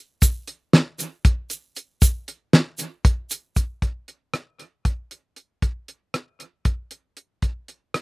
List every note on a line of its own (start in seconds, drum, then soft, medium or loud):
0.22 kick loud
0.22 closed hi-hat medium
0.22 shaker medium
0.47 closed hi-hat medium
0.73 snare loud
0.73 closed hi-hat medium
0.99 closed hi-hat medium
0.99 shaker soft
1.25 kick loud
1.25 closed hi-hat medium
1.50 closed hi-hat medium
1.50 shaker soft
1.76 closed hi-hat medium
1.76 shaker soft
2.02 kick loud
2.02 closed hi-hat medium
2.02 shaker medium
2.28 closed hi-hat medium
2.53 snare loud
2.53 closed hi-hat medium
2.78 closed hi-hat medium
2.78 shaker soft
3.05 kick loud
3.05 closed hi-hat medium
3.30 closed hi-hat medium
3.30 shaker medium
3.56 kick medium
3.56 closed hi-hat medium
3.56 shaker soft
3.82 kick medium
3.82 closed hi-hat medium
4.08 closed hi-hat soft
4.34 cross-stick medium
4.34 closed hi-hat medium
4.59 closed hi-hat soft
4.85 kick medium
4.85 closed hi-hat medium
5.11 closed hi-hat soft
5.36 closed hi-hat soft
5.62 kick medium
5.62 closed hi-hat medium
5.88 closed hi-hat soft
6.14 cross-stick medium
6.14 closed hi-hat medium
6.40 closed hi-hat soft
6.65 kick medium
6.65 closed hi-hat medium
6.91 closed hi-hat medium
7.17 closed hi-hat soft
7.42 kick medium
7.42 closed hi-hat medium
7.68 closed hi-hat soft
7.94 cross-stick medium
7.94 closed hi-hat medium